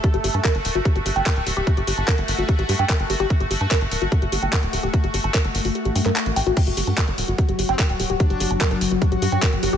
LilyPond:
<<
  \new Staff \with { instrumentName = "Synth arpeggio sound" } { \time 4/4 \key g \minor \tempo 4 = 147 g'16 g'16 g'16 a''16 bes'16 r8 fis'16 g'16 g'16 g'16 g''16 bes'16 r16 g'16 g'16 | g'16 g'16 g'16 a''16 bes'16 r8 fis'16 g'16 g'16 g'16 g''16 bes'16 r16 g'16 g'16 | r16 g'16 g'16 a''16 bes'16 r8 fis'16 g'16 g'16 g'16 g''16 bes'16 r16 g'16 g'16 | g'16 g'16 g'16 a''16 bes'16 r8 fis'16 g'16 g'16 g''16 bes'16 a''16 r16 g''16 fis'16 |
g'16 g'16 g'16 a''16 bes'16 bes'16 r16 fis'16 g'16 g'16 g'16 g''16 bes'16 r16 g'16 g'16 | g'16 g'16 g'16 a''16 bes'16 bes'16 r16 fis'16 g'16 g'16 g'16 g''16 bes'16 r16 g'16 g'16 | }
  \new Staff \with { instrumentName = "Wobble bass" } { \time 4/4 \key g \minor r1 | r1 | r1 | r1 |
r2 r8. c'16 r4 | d'4 r16 d'16 r8. fis'4. r16 | }
  \new Staff \with { instrumentName = "Synth texture" } { \time 4/4 \key g \minor <a fis'>1~ | <a fis'>1~ | <a fis'>1~ | <a fis'>1 |
<fis fis'>1~ | <fis fis'>1 | }
  \new Staff \with { instrumentName = "Analog synth bass" } { \clef bass \time 4/4 \key g \minor r16 g,,16 g,,16 g,16 r16 g,,16 d,,16 g,,16 r16 g,,16 g,,16 g,,16 r16 d,,16 d,,16 d,,16 | r16 g,,16 g,,16 g,,16 r16 g,,16 g,,16 g,,16 r16 a,,16 g,16 g,16 r16 g,,16 g,,16 g,,16 | r16 g,,16 g,,16 g,16 r16 g,,16 d,,16 g,,16 r16 g,,16 g,,16 g,,16 r16 d,,16 d,,16 d,,16 | r16 g,,16 g,,16 g,,16 r16 g,,16 g,,16 g,,16 r16 a,,16 g,16 g,16 r16 a,,16 a,,16 a,,16 |
r16 g,,16 g,,16 g,16 r16 g,,16 d,,16 g,,16 r16 g,,16 g,,16 g,,16 r16 d,,16 d,,16 d,,16 | r16 g,,16 g,,16 g,,16 r16 g,,16 g,,16 g,,16 r16 a,,16 g,16 g,16 r16 g,,16 g,,16 g,,16 | }
  \new DrumStaff \with { instrumentName = "Drums" } \drummode { \time 4/4 <hh bd>16 hh16 hho16 hh16 <hc hh bd>16 hh16 hho16 hh16 <hh bd>16 hh16 hho16 hh16 <hc hh bd>16 hh16 hho16 hh16 | <hh bd>16 hh16 hho16 hh16 <hc hh bd>16 hh16 hho16 hh16 <hh bd>16 hh16 hho16 hh16 <hc hh bd>16 hh16 hho16 hh16 | <hh bd>16 hh16 hho16 hh16 <hc hh bd>16 hh16 hho16 hh16 <hh bd>16 hh16 hho16 hh16 <hc hh bd>16 hh16 hho16 hh16 | <hh bd>16 hh16 hho16 hh16 <hc hh bd>16 hh16 hho16 hho16 hh16 hh16 hho16 <hc hh>16 <hc hh>16 hh16 hho16 hh16 |
<cymc hh bd>16 hh16 hho16 hh16 <hc hh bd>16 hh16 hho16 hh16 <hh bd>16 hh16 hho16 hh16 <hc hh bd>16 hh16 hho8 | <hh bd>16 hh16 hho16 hh16 <hc hh bd>16 hh16 hho8 <hh bd>16 hh16 hho16 hh16 <hc hh bd>16 hh16 hho8 | }
>>